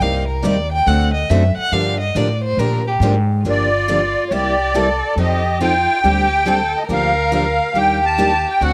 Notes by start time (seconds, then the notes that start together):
0.00 C2 C3 G3 A#3 D#4 G4 F5
0.28 A#4
0.43 D#2 C3 G3 A#3 D#4 G4 D5
0.73 G5
0.86 D2 D3 A3 C4 F#4 A4 F#5
1.14 D#5
1.30 F#2 D3 A3 C4 F#4 A4 E5
1.57 F#5, muted upright bass stroke
1.72 G2 D3 F3 A#3 D4 G4 F5
2.01 D#5
2.15 A2 D3 F3 A#3 D4 G4 D5
2.44 C5
2.57 A#2 D3 F3 A#3 D4 G4 A#4
2.87 G4
3.00 G#2 D3 F3 A#3 D4 G4
3.45 G1 D3 F3 A#3 D4 F4 G4
3.50 D5
3.88 D3 F3 A#3 D4 G4
4.29 C2 C3 G3 A#3 E4 G4 C#5
4.35 D5
4.75 C3 G3 A#3 E4 G4 A4
5.16 F2 F3 C4 D#4 G4 A4 D#5
5.61 F3 C4 D#4 F4 A4 G5
6.04 D2 D3 G3 C4 D4 G4
6.47 D3 G3 C4 D4 G4 A4
6.77 D#5
6.87 D2 D3 F3 A#3 D4 G4 A#4
6.93 F5
7.32 D3 F3 A#3 D4 G4 F5
7.74 D#2 D#3 G3 A#3 D4 G4 G5
8.05 A5
8.18 D#3 G3 A#3 D4 G4
8.49 G5
8.61 D2 D3 A3 C4 F#4 A4 F#5